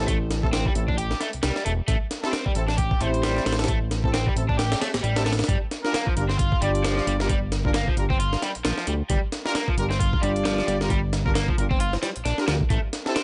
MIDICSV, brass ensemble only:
0, 0, Header, 1, 2, 480
1, 0, Start_track
1, 0, Tempo, 451128
1, 84, Time_signature, 4, 2, 24, 8
1, 14082, End_track
2, 0, Start_track
2, 0, Title_t, "Brass ensemble"
2, 0, Program_c, 0, 61
2, 457, Note_on_c, 0, 69, 100
2, 458, Note_on_c, 0, 60, 87
2, 458, Note_on_c, 0, 64, 79
2, 458, Note_on_c, 0, 67, 80
2, 519, Note_off_c, 0, 60, 0
2, 519, Note_off_c, 0, 64, 0
2, 519, Note_off_c, 0, 67, 0
2, 519, Note_off_c, 0, 69, 0
2, 797, Note_on_c, 0, 64, 71
2, 797, Note_on_c, 0, 69, 82
2, 798, Note_on_c, 0, 60, 76
2, 799, Note_on_c, 0, 67, 71
2, 880, Note_off_c, 0, 69, 0
2, 881, Note_off_c, 0, 60, 0
2, 881, Note_off_c, 0, 64, 0
2, 881, Note_off_c, 0, 67, 0
2, 2376, Note_on_c, 0, 69, 110
2, 2377, Note_on_c, 0, 60, 101
2, 2377, Note_on_c, 0, 67, 88
2, 2378, Note_on_c, 0, 64, 92
2, 2474, Note_off_c, 0, 60, 0
2, 2474, Note_off_c, 0, 67, 0
2, 2474, Note_off_c, 0, 69, 0
2, 2475, Note_off_c, 0, 64, 0
2, 2720, Note_on_c, 0, 64, 80
2, 2720, Note_on_c, 0, 69, 98
2, 2722, Note_on_c, 0, 60, 87
2, 2722, Note_on_c, 0, 67, 81
2, 2802, Note_off_c, 0, 64, 0
2, 2802, Note_off_c, 0, 69, 0
2, 2803, Note_off_c, 0, 60, 0
2, 2803, Note_off_c, 0, 67, 0
2, 3201, Note_on_c, 0, 64, 81
2, 3201, Note_on_c, 0, 67, 80
2, 3202, Note_on_c, 0, 60, 85
2, 3202, Note_on_c, 0, 72, 94
2, 3787, Note_off_c, 0, 64, 0
2, 3787, Note_off_c, 0, 67, 0
2, 3788, Note_off_c, 0, 60, 0
2, 3788, Note_off_c, 0, 72, 0
2, 3816, Note_on_c, 0, 69, 97
2, 3817, Note_on_c, 0, 60, 88
2, 3817, Note_on_c, 0, 64, 81
2, 3818, Note_on_c, 0, 67, 81
2, 3913, Note_off_c, 0, 69, 0
2, 3914, Note_off_c, 0, 60, 0
2, 3914, Note_off_c, 0, 64, 0
2, 3915, Note_off_c, 0, 67, 0
2, 4294, Note_on_c, 0, 64, 81
2, 4295, Note_on_c, 0, 60, 89
2, 4296, Note_on_c, 0, 67, 85
2, 4296, Note_on_c, 0, 69, 97
2, 4357, Note_off_c, 0, 64, 0
2, 4358, Note_off_c, 0, 60, 0
2, 4358, Note_off_c, 0, 67, 0
2, 4358, Note_off_c, 0, 69, 0
2, 4639, Note_on_c, 0, 69, 86
2, 4640, Note_on_c, 0, 60, 80
2, 4640, Note_on_c, 0, 64, 70
2, 4641, Note_on_c, 0, 67, 71
2, 4721, Note_off_c, 0, 69, 0
2, 4722, Note_off_c, 0, 60, 0
2, 4722, Note_off_c, 0, 64, 0
2, 4722, Note_off_c, 0, 67, 0
2, 5494, Note_on_c, 0, 60, 89
2, 5494, Note_on_c, 0, 67, 86
2, 5495, Note_on_c, 0, 64, 86
2, 5495, Note_on_c, 0, 69, 104
2, 5585, Note_off_c, 0, 60, 0
2, 5585, Note_off_c, 0, 64, 0
2, 5585, Note_off_c, 0, 67, 0
2, 5585, Note_off_c, 0, 69, 0
2, 5597, Note_on_c, 0, 64, 66
2, 5597, Note_on_c, 0, 67, 66
2, 5597, Note_on_c, 0, 69, 82
2, 5598, Note_on_c, 0, 60, 73
2, 5680, Note_off_c, 0, 64, 0
2, 5680, Note_off_c, 0, 69, 0
2, 5681, Note_off_c, 0, 60, 0
2, 5681, Note_off_c, 0, 67, 0
2, 6213, Note_on_c, 0, 70, 107
2, 6214, Note_on_c, 0, 62, 99
2, 6214, Note_on_c, 0, 67, 89
2, 6215, Note_on_c, 0, 65, 87
2, 6312, Note_off_c, 0, 70, 0
2, 6313, Note_off_c, 0, 62, 0
2, 6313, Note_off_c, 0, 65, 0
2, 6313, Note_off_c, 0, 67, 0
2, 6556, Note_on_c, 0, 62, 89
2, 6556, Note_on_c, 0, 65, 81
2, 6556, Note_on_c, 0, 70, 94
2, 6557, Note_on_c, 0, 67, 80
2, 6640, Note_off_c, 0, 62, 0
2, 6640, Note_off_c, 0, 65, 0
2, 6640, Note_off_c, 0, 67, 0
2, 6640, Note_off_c, 0, 70, 0
2, 7038, Note_on_c, 0, 65, 80
2, 7038, Note_on_c, 0, 67, 76
2, 7039, Note_on_c, 0, 62, 83
2, 7040, Note_on_c, 0, 74, 96
2, 7626, Note_off_c, 0, 65, 0
2, 7626, Note_off_c, 0, 67, 0
2, 7627, Note_off_c, 0, 62, 0
2, 7627, Note_off_c, 0, 74, 0
2, 7656, Note_on_c, 0, 62, 88
2, 7656, Note_on_c, 0, 65, 83
2, 7657, Note_on_c, 0, 70, 97
2, 7658, Note_on_c, 0, 67, 85
2, 7753, Note_off_c, 0, 62, 0
2, 7754, Note_off_c, 0, 65, 0
2, 7754, Note_off_c, 0, 67, 0
2, 7754, Note_off_c, 0, 70, 0
2, 8138, Note_on_c, 0, 62, 91
2, 8138, Note_on_c, 0, 67, 83
2, 8139, Note_on_c, 0, 65, 81
2, 8139, Note_on_c, 0, 70, 98
2, 8199, Note_off_c, 0, 62, 0
2, 8199, Note_off_c, 0, 65, 0
2, 8199, Note_off_c, 0, 67, 0
2, 8199, Note_off_c, 0, 70, 0
2, 8481, Note_on_c, 0, 62, 80
2, 8481, Note_on_c, 0, 65, 70
2, 8481, Note_on_c, 0, 67, 70
2, 8482, Note_on_c, 0, 70, 89
2, 8562, Note_off_c, 0, 62, 0
2, 8562, Note_off_c, 0, 65, 0
2, 8562, Note_off_c, 0, 67, 0
2, 8563, Note_off_c, 0, 70, 0
2, 10057, Note_on_c, 0, 67, 88
2, 10057, Note_on_c, 0, 70, 113
2, 10058, Note_on_c, 0, 62, 99
2, 10058, Note_on_c, 0, 65, 92
2, 10154, Note_off_c, 0, 67, 0
2, 10154, Note_off_c, 0, 70, 0
2, 10155, Note_off_c, 0, 62, 0
2, 10155, Note_off_c, 0, 65, 0
2, 10401, Note_on_c, 0, 62, 89
2, 10402, Note_on_c, 0, 67, 83
2, 10403, Note_on_c, 0, 65, 83
2, 10403, Note_on_c, 0, 70, 98
2, 10483, Note_off_c, 0, 62, 0
2, 10483, Note_off_c, 0, 65, 0
2, 10483, Note_off_c, 0, 67, 0
2, 10483, Note_off_c, 0, 70, 0
2, 10880, Note_on_c, 0, 62, 87
2, 10880, Note_on_c, 0, 65, 79
2, 10880, Note_on_c, 0, 67, 79
2, 10880, Note_on_c, 0, 74, 97
2, 11467, Note_off_c, 0, 62, 0
2, 11467, Note_off_c, 0, 65, 0
2, 11467, Note_off_c, 0, 67, 0
2, 11467, Note_off_c, 0, 74, 0
2, 11499, Note_on_c, 0, 62, 90
2, 11499, Note_on_c, 0, 67, 80
2, 11499, Note_on_c, 0, 70, 95
2, 11500, Note_on_c, 0, 65, 84
2, 11595, Note_off_c, 0, 62, 0
2, 11595, Note_off_c, 0, 65, 0
2, 11595, Note_off_c, 0, 67, 0
2, 11595, Note_off_c, 0, 70, 0
2, 11977, Note_on_c, 0, 67, 83
2, 11978, Note_on_c, 0, 62, 89
2, 11978, Note_on_c, 0, 70, 99
2, 11979, Note_on_c, 0, 65, 84
2, 12039, Note_off_c, 0, 62, 0
2, 12039, Note_off_c, 0, 65, 0
2, 12039, Note_off_c, 0, 67, 0
2, 12039, Note_off_c, 0, 70, 0
2, 12318, Note_on_c, 0, 62, 78
2, 12318, Note_on_c, 0, 65, 72
2, 12318, Note_on_c, 0, 67, 74
2, 12318, Note_on_c, 0, 70, 85
2, 12401, Note_off_c, 0, 62, 0
2, 12401, Note_off_c, 0, 65, 0
2, 12401, Note_off_c, 0, 67, 0
2, 12401, Note_off_c, 0, 70, 0
2, 13175, Note_on_c, 0, 65, 86
2, 13176, Note_on_c, 0, 62, 92
2, 13176, Note_on_c, 0, 67, 84
2, 13177, Note_on_c, 0, 70, 101
2, 13265, Note_off_c, 0, 65, 0
2, 13266, Note_off_c, 0, 62, 0
2, 13266, Note_off_c, 0, 67, 0
2, 13266, Note_off_c, 0, 70, 0
2, 13277, Note_on_c, 0, 65, 70
2, 13277, Note_on_c, 0, 67, 66
2, 13278, Note_on_c, 0, 62, 75
2, 13278, Note_on_c, 0, 70, 82
2, 13361, Note_off_c, 0, 62, 0
2, 13361, Note_off_c, 0, 65, 0
2, 13361, Note_off_c, 0, 67, 0
2, 13361, Note_off_c, 0, 70, 0
2, 13893, Note_on_c, 0, 60, 101
2, 13893, Note_on_c, 0, 64, 90
2, 13893, Note_on_c, 0, 69, 110
2, 13894, Note_on_c, 0, 67, 90
2, 13992, Note_off_c, 0, 60, 0
2, 13992, Note_off_c, 0, 64, 0
2, 13992, Note_off_c, 0, 69, 0
2, 13993, Note_off_c, 0, 67, 0
2, 14082, End_track
0, 0, End_of_file